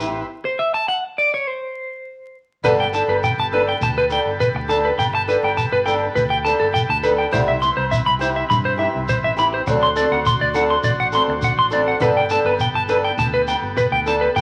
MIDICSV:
0, 0, Header, 1, 9, 480
1, 0, Start_track
1, 0, Key_signature, 1, "major"
1, 0, Tempo, 585938
1, 243, Time_signature, 4, 2, 24, 8
1, 11805, End_track
2, 0, Start_track
2, 0, Title_t, "Clean electric guitar"
2, 0, Program_c, 0, 27
2, 368, Note_on_c, 0, 72, 77
2, 481, Note_off_c, 0, 72, 0
2, 484, Note_on_c, 0, 76, 90
2, 603, Note_off_c, 0, 76, 0
2, 608, Note_on_c, 0, 81, 98
2, 720, Note_off_c, 0, 81, 0
2, 724, Note_on_c, 0, 78, 83
2, 844, Note_off_c, 0, 78, 0
2, 969, Note_on_c, 0, 74, 83
2, 1086, Note_off_c, 0, 74, 0
2, 1097, Note_on_c, 0, 73, 83
2, 1215, Note_off_c, 0, 73, 0
2, 1215, Note_on_c, 0, 72, 72
2, 1930, Note_off_c, 0, 72, 0
2, 2168, Note_on_c, 0, 71, 98
2, 2231, Note_off_c, 0, 71, 0
2, 2294, Note_on_c, 0, 79, 76
2, 2352, Note_off_c, 0, 79, 0
2, 2414, Note_on_c, 0, 81, 69
2, 2475, Note_off_c, 0, 81, 0
2, 2533, Note_on_c, 0, 71, 83
2, 2591, Note_off_c, 0, 71, 0
2, 2653, Note_on_c, 0, 79, 73
2, 2714, Note_off_c, 0, 79, 0
2, 2782, Note_on_c, 0, 81, 79
2, 2838, Note_off_c, 0, 81, 0
2, 2897, Note_on_c, 0, 71, 88
2, 2957, Note_off_c, 0, 71, 0
2, 3019, Note_on_c, 0, 79, 81
2, 3076, Note_off_c, 0, 79, 0
2, 3138, Note_on_c, 0, 81, 74
2, 3198, Note_off_c, 0, 81, 0
2, 3257, Note_on_c, 0, 71, 91
2, 3315, Note_off_c, 0, 71, 0
2, 3377, Note_on_c, 0, 79, 72
2, 3437, Note_off_c, 0, 79, 0
2, 3607, Note_on_c, 0, 71, 87
2, 3669, Note_off_c, 0, 71, 0
2, 3846, Note_on_c, 0, 81, 77
2, 3909, Note_off_c, 0, 81, 0
2, 3972, Note_on_c, 0, 71, 84
2, 4031, Note_off_c, 0, 71, 0
2, 4087, Note_on_c, 0, 79, 82
2, 4149, Note_off_c, 0, 79, 0
2, 4216, Note_on_c, 0, 81, 78
2, 4273, Note_off_c, 0, 81, 0
2, 4330, Note_on_c, 0, 71, 83
2, 4392, Note_off_c, 0, 71, 0
2, 4458, Note_on_c, 0, 79, 76
2, 4515, Note_off_c, 0, 79, 0
2, 4565, Note_on_c, 0, 81, 71
2, 4628, Note_off_c, 0, 81, 0
2, 4690, Note_on_c, 0, 71, 89
2, 4748, Note_off_c, 0, 71, 0
2, 4797, Note_on_c, 0, 79, 72
2, 4862, Note_off_c, 0, 79, 0
2, 5042, Note_on_c, 0, 71, 82
2, 5105, Note_off_c, 0, 71, 0
2, 5163, Note_on_c, 0, 79, 77
2, 5223, Note_off_c, 0, 79, 0
2, 5281, Note_on_c, 0, 81, 75
2, 5344, Note_off_c, 0, 81, 0
2, 5404, Note_on_c, 0, 69, 85
2, 5464, Note_off_c, 0, 69, 0
2, 5522, Note_on_c, 0, 79, 80
2, 5585, Note_off_c, 0, 79, 0
2, 5653, Note_on_c, 0, 81, 75
2, 5710, Note_off_c, 0, 81, 0
2, 5764, Note_on_c, 0, 71, 89
2, 5826, Note_off_c, 0, 71, 0
2, 5885, Note_on_c, 0, 79, 73
2, 5945, Note_off_c, 0, 79, 0
2, 6001, Note_on_c, 0, 72, 89
2, 6064, Note_off_c, 0, 72, 0
2, 6127, Note_on_c, 0, 76, 79
2, 6186, Note_off_c, 0, 76, 0
2, 6242, Note_on_c, 0, 84, 69
2, 6304, Note_off_c, 0, 84, 0
2, 6363, Note_on_c, 0, 72, 85
2, 6423, Note_off_c, 0, 72, 0
2, 6483, Note_on_c, 0, 76, 73
2, 6545, Note_off_c, 0, 76, 0
2, 6606, Note_on_c, 0, 83, 76
2, 6664, Note_off_c, 0, 83, 0
2, 6726, Note_on_c, 0, 72, 87
2, 6787, Note_off_c, 0, 72, 0
2, 6850, Note_on_c, 0, 76, 81
2, 6908, Note_off_c, 0, 76, 0
2, 6963, Note_on_c, 0, 83, 77
2, 7025, Note_off_c, 0, 83, 0
2, 7087, Note_on_c, 0, 72, 89
2, 7146, Note_off_c, 0, 72, 0
2, 7200, Note_on_c, 0, 76, 72
2, 7263, Note_off_c, 0, 76, 0
2, 7448, Note_on_c, 0, 72, 92
2, 7508, Note_off_c, 0, 72, 0
2, 7572, Note_on_c, 0, 76, 77
2, 7629, Note_off_c, 0, 76, 0
2, 7691, Note_on_c, 0, 83, 76
2, 7751, Note_off_c, 0, 83, 0
2, 7813, Note_on_c, 0, 72, 85
2, 7870, Note_off_c, 0, 72, 0
2, 8050, Note_on_c, 0, 84, 73
2, 8107, Note_off_c, 0, 84, 0
2, 8165, Note_on_c, 0, 74, 86
2, 8226, Note_off_c, 0, 74, 0
2, 8290, Note_on_c, 0, 78, 74
2, 8348, Note_off_c, 0, 78, 0
2, 8409, Note_on_c, 0, 84, 74
2, 8470, Note_off_c, 0, 84, 0
2, 8530, Note_on_c, 0, 74, 87
2, 8588, Note_off_c, 0, 74, 0
2, 8647, Note_on_c, 0, 78, 73
2, 8708, Note_off_c, 0, 78, 0
2, 8769, Note_on_c, 0, 84, 78
2, 8827, Note_off_c, 0, 84, 0
2, 8882, Note_on_c, 0, 74, 84
2, 8944, Note_off_c, 0, 74, 0
2, 9010, Note_on_c, 0, 78, 73
2, 9068, Note_off_c, 0, 78, 0
2, 9133, Note_on_c, 0, 84, 73
2, 9192, Note_off_c, 0, 84, 0
2, 9374, Note_on_c, 0, 78, 82
2, 9433, Note_off_c, 0, 78, 0
2, 9492, Note_on_c, 0, 84, 81
2, 9549, Note_off_c, 0, 84, 0
2, 9610, Note_on_c, 0, 74, 88
2, 9670, Note_off_c, 0, 74, 0
2, 9731, Note_on_c, 0, 78, 73
2, 9788, Note_off_c, 0, 78, 0
2, 9845, Note_on_c, 0, 71, 91
2, 9906, Note_off_c, 0, 71, 0
2, 9969, Note_on_c, 0, 79, 74
2, 10026, Note_off_c, 0, 79, 0
2, 10086, Note_on_c, 0, 81, 73
2, 10147, Note_off_c, 0, 81, 0
2, 10206, Note_on_c, 0, 71, 80
2, 10265, Note_off_c, 0, 71, 0
2, 10330, Note_on_c, 0, 79, 70
2, 10390, Note_off_c, 0, 79, 0
2, 10448, Note_on_c, 0, 81, 78
2, 10506, Note_off_c, 0, 81, 0
2, 10565, Note_on_c, 0, 71, 85
2, 10626, Note_off_c, 0, 71, 0
2, 10686, Note_on_c, 0, 79, 77
2, 10744, Note_off_c, 0, 79, 0
2, 10804, Note_on_c, 0, 81, 71
2, 10865, Note_off_c, 0, 81, 0
2, 10925, Note_on_c, 0, 71, 85
2, 10984, Note_off_c, 0, 71, 0
2, 11043, Note_on_c, 0, 79, 76
2, 11105, Note_off_c, 0, 79, 0
2, 11284, Note_on_c, 0, 71, 93
2, 11346, Note_off_c, 0, 71, 0
2, 11405, Note_on_c, 0, 79, 73
2, 11464, Note_off_c, 0, 79, 0
2, 11532, Note_on_c, 0, 81, 78
2, 11592, Note_off_c, 0, 81, 0
2, 11641, Note_on_c, 0, 71, 86
2, 11701, Note_off_c, 0, 71, 0
2, 11764, Note_on_c, 0, 79, 84
2, 11805, Note_off_c, 0, 79, 0
2, 11805, End_track
3, 0, Start_track
3, 0, Title_t, "Transistor combo organ"
3, 0, Program_c, 1, 18
3, 0, Note_on_c, 1, 71, 68
3, 0, Note_on_c, 1, 72, 59
3, 0, Note_on_c, 1, 76, 67
3, 217, Note_off_c, 1, 71, 0
3, 217, Note_off_c, 1, 72, 0
3, 218, Note_off_c, 1, 76, 0
3, 2156, Note_on_c, 1, 71, 67
3, 2160, Note_on_c, 1, 67, 67
3, 2160, Note_on_c, 1, 69, 57
3, 5965, Note_off_c, 1, 67, 0
3, 5965, Note_off_c, 1, 69, 0
3, 5999, Note_on_c, 1, 64, 64
3, 6005, Note_on_c, 1, 60, 70
3, 7880, Note_off_c, 1, 71, 0
3, 7898, Note_off_c, 1, 64, 0
3, 7901, Note_off_c, 1, 60, 0
3, 7926, Note_on_c, 1, 72, 74
3, 7928, Note_on_c, 1, 62, 65
3, 7928, Note_on_c, 1, 66, 64
3, 9822, Note_off_c, 1, 72, 0
3, 9823, Note_off_c, 1, 62, 0
3, 9823, Note_off_c, 1, 66, 0
3, 9842, Note_on_c, 1, 67, 61
3, 9843, Note_on_c, 1, 69, 67
3, 9844, Note_on_c, 1, 59, 65
3, 11741, Note_off_c, 1, 67, 0
3, 11760, Note_on_c, 1, 66, 60
3, 11805, Note_off_c, 1, 59, 0
3, 11805, Note_off_c, 1, 66, 0
3, 11805, Note_off_c, 1, 69, 0
3, 11805, End_track
4, 0, Start_track
4, 0, Title_t, "Steel-string acoustic guitar"
4, 0, Program_c, 2, 25
4, 4, Note_on_c, 2, 67, 51
4, 9, Note_on_c, 2, 64, 50
4, 19, Note_on_c, 2, 59, 42
4, 150, Note_off_c, 2, 67, 0
4, 153, Note_off_c, 2, 64, 0
4, 158, Note_off_c, 2, 59, 0
4, 2160, Note_on_c, 2, 55, 88
4, 2163, Note_on_c, 2, 59, 96
4, 2168, Note_on_c, 2, 62, 98
4, 2173, Note_on_c, 2, 69, 102
4, 2309, Note_off_c, 2, 55, 0
4, 2311, Note_off_c, 2, 59, 0
4, 2313, Note_off_c, 2, 62, 0
4, 2316, Note_off_c, 2, 69, 0
4, 2401, Note_on_c, 2, 69, 68
4, 2410, Note_on_c, 2, 62, 55
4, 2417, Note_on_c, 2, 59, 55
4, 2550, Note_off_c, 2, 69, 0
4, 2554, Note_off_c, 2, 62, 0
4, 2558, Note_off_c, 2, 59, 0
4, 2887, Note_on_c, 2, 69, 60
4, 2893, Note_on_c, 2, 62, 63
4, 2899, Note_on_c, 2, 59, 53
4, 3033, Note_off_c, 2, 69, 0
4, 3036, Note_off_c, 2, 62, 0
4, 3038, Note_off_c, 2, 59, 0
4, 3357, Note_on_c, 2, 69, 59
4, 3367, Note_on_c, 2, 62, 55
4, 3373, Note_on_c, 2, 59, 47
4, 3507, Note_off_c, 2, 69, 0
4, 3512, Note_off_c, 2, 62, 0
4, 3515, Note_off_c, 2, 59, 0
4, 3840, Note_on_c, 2, 69, 62
4, 3847, Note_on_c, 2, 62, 61
4, 3859, Note_on_c, 2, 59, 53
4, 3988, Note_off_c, 2, 69, 0
4, 3992, Note_off_c, 2, 62, 0
4, 3998, Note_off_c, 2, 59, 0
4, 4322, Note_on_c, 2, 69, 68
4, 4329, Note_on_c, 2, 62, 60
4, 4338, Note_on_c, 2, 59, 55
4, 4469, Note_off_c, 2, 69, 0
4, 4473, Note_off_c, 2, 62, 0
4, 4477, Note_off_c, 2, 59, 0
4, 4796, Note_on_c, 2, 69, 57
4, 4806, Note_on_c, 2, 62, 61
4, 4815, Note_on_c, 2, 59, 55
4, 4945, Note_off_c, 2, 69, 0
4, 4951, Note_off_c, 2, 62, 0
4, 4955, Note_off_c, 2, 59, 0
4, 5281, Note_on_c, 2, 69, 61
4, 5290, Note_on_c, 2, 62, 55
4, 5299, Note_on_c, 2, 59, 54
4, 5428, Note_off_c, 2, 69, 0
4, 5432, Note_off_c, 2, 62, 0
4, 5436, Note_off_c, 2, 59, 0
4, 5760, Note_on_c, 2, 69, 69
4, 5772, Note_on_c, 2, 62, 55
4, 5779, Note_on_c, 2, 59, 58
4, 5907, Note_off_c, 2, 69, 0
4, 5913, Note_off_c, 2, 62, 0
4, 5916, Note_off_c, 2, 59, 0
4, 5993, Note_on_c, 2, 55, 92
4, 6001, Note_on_c, 2, 59, 86
4, 6003, Note_on_c, 2, 64, 96
4, 6007, Note_on_c, 2, 67, 97
4, 6143, Note_off_c, 2, 55, 0
4, 6147, Note_off_c, 2, 59, 0
4, 6148, Note_off_c, 2, 64, 0
4, 6150, Note_off_c, 2, 67, 0
4, 6252, Note_on_c, 2, 59, 55
4, 6392, Note_off_c, 2, 59, 0
4, 6710, Note_on_c, 2, 67, 67
4, 6718, Note_on_c, 2, 64, 59
4, 6725, Note_on_c, 2, 59, 49
4, 6861, Note_off_c, 2, 67, 0
4, 6865, Note_off_c, 2, 64, 0
4, 6869, Note_off_c, 2, 59, 0
4, 7188, Note_on_c, 2, 67, 55
4, 7198, Note_on_c, 2, 64, 53
4, 7205, Note_on_c, 2, 59, 50
4, 7340, Note_off_c, 2, 67, 0
4, 7345, Note_off_c, 2, 64, 0
4, 7348, Note_off_c, 2, 59, 0
4, 7672, Note_on_c, 2, 67, 65
4, 7681, Note_on_c, 2, 64, 59
4, 7686, Note_on_c, 2, 59, 54
4, 7822, Note_off_c, 2, 67, 0
4, 7826, Note_off_c, 2, 64, 0
4, 7829, Note_off_c, 2, 59, 0
4, 7921, Note_on_c, 2, 54, 78
4, 7929, Note_on_c, 2, 60, 80
4, 7931, Note_on_c, 2, 62, 87
4, 7935, Note_on_c, 2, 69, 88
4, 8066, Note_off_c, 2, 54, 0
4, 8070, Note_off_c, 2, 60, 0
4, 8071, Note_off_c, 2, 62, 0
4, 8073, Note_off_c, 2, 69, 0
4, 8156, Note_on_c, 2, 69, 64
4, 8169, Note_on_c, 2, 62, 64
4, 8176, Note_on_c, 2, 60, 55
4, 8304, Note_off_c, 2, 69, 0
4, 8310, Note_off_c, 2, 62, 0
4, 8314, Note_off_c, 2, 60, 0
4, 8636, Note_on_c, 2, 69, 67
4, 8642, Note_on_c, 2, 62, 62
4, 8654, Note_on_c, 2, 60, 53
4, 8783, Note_off_c, 2, 69, 0
4, 8786, Note_off_c, 2, 62, 0
4, 8792, Note_off_c, 2, 60, 0
4, 9110, Note_on_c, 2, 69, 58
4, 9120, Note_on_c, 2, 62, 52
4, 9129, Note_on_c, 2, 60, 48
4, 9260, Note_off_c, 2, 69, 0
4, 9266, Note_off_c, 2, 62, 0
4, 9270, Note_off_c, 2, 60, 0
4, 9589, Note_on_c, 2, 69, 70
4, 9598, Note_on_c, 2, 62, 62
4, 9608, Note_on_c, 2, 60, 53
4, 9740, Note_off_c, 2, 69, 0
4, 9745, Note_off_c, 2, 62, 0
4, 9750, Note_off_c, 2, 60, 0
4, 9829, Note_on_c, 2, 55, 87
4, 9833, Note_on_c, 2, 59, 90
4, 9835, Note_on_c, 2, 62, 93
4, 9839, Note_on_c, 2, 69, 91
4, 9980, Note_off_c, 2, 55, 0
4, 9982, Note_off_c, 2, 59, 0
4, 9983, Note_off_c, 2, 62, 0
4, 9985, Note_off_c, 2, 69, 0
4, 10079, Note_on_c, 2, 69, 66
4, 10086, Note_on_c, 2, 62, 57
4, 10094, Note_on_c, 2, 59, 57
4, 10225, Note_off_c, 2, 69, 0
4, 10229, Note_off_c, 2, 62, 0
4, 10233, Note_off_c, 2, 59, 0
4, 10556, Note_on_c, 2, 69, 67
4, 10569, Note_on_c, 2, 62, 55
4, 10576, Note_on_c, 2, 59, 53
4, 10704, Note_off_c, 2, 69, 0
4, 10710, Note_off_c, 2, 62, 0
4, 10714, Note_off_c, 2, 59, 0
4, 11065, Note_on_c, 2, 59, 48
4, 11198, Note_off_c, 2, 59, 0
4, 11516, Note_on_c, 2, 69, 61
4, 11525, Note_on_c, 2, 62, 55
4, 11533, Note_on_c, 2, 59, 54
4, 11664, Note_off_c, 2, 69, 0
4, 11668, Note_off_c, 2, 62, 0
4, 11672, Note_off_c, 2, 59, 0
4, 11805, End_track
5, 0, Start_track
5, 0, Title_t, "Fingered electric bass"
5, 0, Program_c, 3, 33
5, 0, Note_on_c, 3, 33, 83
5, 177, Note_off_c, 3, 33, 0
5, 2159, Note_on_c, 3, 31, 99
5, 2462, Note_off_c, 3, 31, 0
5, 2522, Note_on_c, 3, 31, 94
5, 2723, Note_off_c, 3, 31, 0
5, 2766, Note_on_c, 3, 31, 92
5, 3061, Note_off_c, 3, 31, 0
5, 3119, Note_on_c, 3, 38, 100
5, 3421, Note_off_c, 3, 38, 0
5, 3485, Note_on_c, 3, 31, 73
5, 3684, Note_off_c, 3, 31, 0
5, 3723, Note_on_c, 3, 38, 88
5, 4019, Note_off_c, 3, 38, 0
5, 4078, Note_on_c, 3, 31, 91
5, 4380, Note_off_c, 3, 31, 0
5, 4446, Note_on_c, 3, 31, 86
5, 4644, Note_off_c, 3, 31, 0
5, 4684, Note_on_c, 3, 31, 88
5, 4979, Note_off_c, 3, 31, 0
5, 5045, Note_on_c, 3, 38, 101
5, 5344, Note_off_c, 3, 38, 0
5, 5411, Note_on_c, 3, 31, 87
5, 5607, Note_off_c, 3, 31, 0
5, 5646, Note_on_c, 3, 38, 96
5, 5940, Note_off_c, 3, 38, 0
5, 6007, Note_on_c, 3, 36, 103
5, 6304, Note_off_c, 3, 36, 0
5, 6366, Note_on_c, 3, 36, 90
5, 6563, Note_off_c, 3, 36, 0
5, 6606, Note_on_c, 3, 36, 90
5, 6899, Note_off_c, 3, 36, 0
5, 6967, Note_on_c, 3, 43, 105
5, 7264, Note_off_c, 3, 43, 0
5, 7330, Note_on_c, 3, 36, 80
5, 7525, Note_off_c, 3, 36, 0
5, 7568, Note_on_c, 3, 33, 94
5, 7860, Note_off_c, 3, 33, 0
5, 7924, Note_on_c, 3, 38, 92
5, 8222, Note_off_c, 3, 38, 0
5, 8285, Note_on_c, 3, 38, 90
5, 8482, Note_off_c, 3, 38, 0
5, 8528, Note_on_c, 3, 38, 93
5, 8820, Note_off_c, 3, 38, 0
5, 8877, Note_on_c, 3, 33, 101
5, 9177, Note_off_c, 3, 33, 0
5, 9237, Note_on_c, 3, 38, 72
5, 9437, Note_off_c, 3, 38, 0
5, 9478, Note_on_c, 3, 33, 85
5, 9774, Note_off_c, 3, 33, 0
5, 9831, Note_on_c, 3, 31, 87
5, 10134, Note_off_c, 3, 31, 0
5, 10194, Note_on_c, 3, 31, 83
5, 10395, Note_off_c, 3, 31, 0
5, 10437, Note_on_c, 3, 31, 84
5, 10734, Note_off_c, 3, 31, 0
5, 10792, Note_on_c, 3, 38, 91
5, 11095, Note_off_c, 3, 38, 0
5, 11157, Note_on_c, 3, 31, 81
5, 11357, Note_off_c, 3, 31, 0
5, 11397, Note_on_c, 3, 38, 91
5, 11694, Note_off_c, 3, 38, 0
5, 11763, Note_on_c, 3, 31, 98
5, 11805, Note_off_c, 3, 31, 0
5, 11805, End_track
6, 0, Start_track
6, 0, Title_t, "Muted clean electric guitar strokes"
6, 3735, Note_on_c, 9, 29, 73
6, 3817, Note_off_c, 9, 29, 0
6, 7926, Note_on_c, 9, 29, 76
6, 8008, Note_off_c, 9, 29, 0
6, 9255, Note_on_c, 9, 29, 95
6, 9337, Note_off_c, 9, 29, 0
6, 11805, End_track
7, 0, Start_track
7, 0, Title_t, "Muted steel-string acoustic guitar strokes"
7, 6237, Note_on_c, 9, 29, 69
7, 6318, Note_off_c, 9, 29, 0
7, 11045, Note_on_c, 9, 29, 56
7, 11127, Note_off_c, 9, 29, 0
7, 11805, End_track
8, 0, Start_track
8, 0, Title_t, "Shekere"
8, 1, Note_on_c, 9, 82, 71
8, 83, Note_off_c, 9, 82, 0
8, 2167, Note_on_c, 9, 82, 110
8, 2249, Note_off_c, 9, 82, 0
8, 2406, Note_on_c, 9, 82, 79
8, 2488, Note_off_c, 9, 82, 0
8, 2650, Note_on_c, 9, 82, 100
8, 2732, Note_off_c, 9, 82, 0
8, 3124, Note_on_c, 9, 82, 98
8, 3206, Note_off_c, 9, 82, 0
8, 3362, Note_on_c, 9, 82, 74
8, 3443, Note_off_c, 9, 82, 0
8, 3609, Note_on_c, 9, 82, 91
8, 3691, Note_off_c, 9, 82, 0
8, 3849, Note_on_c, 9, 82, 66
8, 3931, Note_off_c, 9, 82, 0
8, 4092, Note_on_c, 9, 82, 74
8, 4174, Note_off_c, 9, 82, 0
8, 4336, Note_on_c, 9, 82, 61
8, 4418, Note_off_c, 9, 82, 0
8, 4568, Note_on_c, 9, 82, 80
8, 4650, Note_off_c, 9, 82, 0
8, 4812, Note_on_c, 9, 82, 68
8, 4894, Note_off_c, 9, 82, 0
8, 5049, Note_on_c, 9, 82, 93
8, 5131, Note_off_c, 9, 82, 0
8, 5292, Note_on_c, 9, 82, 76
8, 5374, Note_off_c, 9, 82, 0
8, 5532, Note_on_c, 9, 82, 93
8, 5614, Note_off_c, 9, 82, 0
8, 5765, Note_on_c, 9, 82, 69
8, 5847, Note_off_c, 9, 82, 0
8, 6010, Note_on_c, 9, 82, 95
8, 6092, Note_off_c, 9, 82, 0
8, 6246, Note_on_c, 9, 82, 77
8, 6328, Note_off_c, 9, 82, 0
8, 6489, Note_on_c, 9, 82, 98
8, 6571, Note_off_c, 9, 82, 0
8, 6729, Note_on_c, 9, 82, 83
8, 6811, Note_off_c, 9, 82, 0
8, 6967, Note_on_c, 9, 82, 108
8, 7049, Note_off_c, 9, 82, 0
8, 7441, Note_on_c, 9, 82, 105
8, 7523, Note_off_c, 9, 82, 0
8, 7684, Note_on_c, 9, 82, 93
8, 7766, Note_off_c, 9, 82, 0
8, 7921, Note_on_c, 9, 82, 109
8, 8002, Note_off_c, 9, 82, 0
8, 8163, Note_on_c, 9, 82, 91
8, 8245, Note_off_c, 9, 82, 0
8, 8405, Note_on_c, 9, 82, 109
8, 8487, Note_off_c, 9, 82, 0
8, 8639, Note_on_c, 9, 82, 90
8, 8721, Note_off_c, 9, 82, 0
8, 8875, Note_on_c, 9, 82, 103
8, 8956, Note_off_c, 9, 82, 0
8, 9114, Note_on_c, 9, 82, 76
8, 9196, Note_off_c, 9, 82, 0
8, 9355, Note_on_c, 9, 82, 99
8, 9437, Note_off_c, 9, 82, 0
8, 9597, Note_on_c, 9, 82, 72
8, 9679, Note_off_c, 9, 82, 0
8, 9839, Note_on_c, 9, 82, 90
8, 9921, Note_off_c, 9, 82, 0
8, 10073, Note_on_c, 9, 82, 74
8, 10154, Note_off_c, 9, 82, 0
8, 10317, Note_on_c, 9, 82, 93
8, 10399, Note_off_c, 9, 82, 0
8, 10555, Note_on_c, 9, 82, 68
8, 10637, Note_off_c, 9, 82, 0
8, 10802, Note_on_c, 9, 82, 93
8, 10883, Note_off_c, 9, 82, 0
8, 11041, Note_on_c, 9, 82, 72
8, 11123, Note_off_c, 9, 82, 0
8, 11282, Note_on_c, 9, 82, 90
8, 11364, Note_off_c, 9, 82, 0
8, 11526, Note_on_c, 9, 82, 67
8, 11608, Note_off_c, 9, 82, 0
8, 11766, Note_on_c, 9, 82, 83
8, 11805, Note_off_c, 9, 82, 0
8, 11805, End_track
9, 0, Start_track
9, 0, Title_t, "Drums"
9, 0, Note_on_c, 9, 68, 65
9, 81, Note_off_c, 9, 68, 0
9, 2164, Note_on_c, 9, 68, 72
9, 2246, Note_off_c, 9, 68, 0
9, 2527, Note_on_c, 9, 68, 67
9, 2609, Note_off_c, 9, 68, 0
9, 2883, Note_on_c, 9, 68, 64
9, 2965, Note_off_c, 9, 68, 0
9, 3361, Note_on_c, 9, 68, 71
9, 3443, Note_off_c, 9, 68, 0
9, 3842, Note_on_c, 9, 68, 69
9, 3923, Note_off_c, 9, 68, 0
9, 4081, Note_on_c, 9, 68, 76
9, 4162, Note_off_c, 9, 68, 0
9, 4445, Note_on_c, 9, 68, 68
9, 4527, Note_off_c, 9, 68, 0
9, 4800, Note_on_c, 9, 68, 68
9, 4882, Note_off_c, 9, 68, 0
9, 5286, Note_on_c, 9, 68, 70
9, 5368, Note_off_c, 9, 68, 0
9, 5764, Note_on_c, 9, 68, 66
9, 5846, Note_off_c, 9, 68, 0
9, 6006, Note_on_c, 9, 68, 74
9, 6088, Note_off_c, 9, 68, 0
9, 6372, Note_on_c, 9, 68, 68
9, 6454, Note_off_c, 9, 68, 0
9, 6728, Note_on_c, 9, 68, 65
9, 6810, Note_off_c, 9, 68, 0
9, 7210, Note_on_c, 9, 68, 68
9, 7292, Note_off_c, 9, 68, 0
9, 7682, Note_on_c, 9, 68, 69
9, 7764, Note_off_c, 9, 68, 0
9, 7923, Note_on_c, 9, 68, 73
9, 8005, Note_off_c, 9, 68, 0
9, 8286, Note_on_c, 9, 68, 69
9, 8368, Note_off_c, 9, 68, 0
9, 8641, Note_on_c, 9, 68, 69
9, 8723, Note_off_c, 9, 68, 0
9, 9117, Note_on_c, 9, 68, 67
9, 9199, Note_off_c, 9, 68, 0
9, 9600, Note_on_c, 9, 68, 64
9, 9682, Note_off_c, 9, 68, 0
9, 9841, Note_on_c, 9, 68, 68
9, 9923, Note_off_c, 9, 68, 0
9, 10208, Note_on_c, 9, 68, 67
9, 10290, Note_off_c, 9, 68, 0
9, 10562, Note_on_c, 9, 68, 67
9, 10643, Note_off_c, 9, 68, 0
9, 11048, Note_on_c, 9, 68, 74
9, 11130, Note_off_c, 9, 68, 0
9, 11530, Note_on_c, 9, 68, 67
9, 11612, Note_off_c, 9, 68, 0
9, 11766, Note_on_c, 9, 68, 71
9, 11805, Note_off_c, 9, 68, 0
9, 11805, End_track
0, 0, End_of_file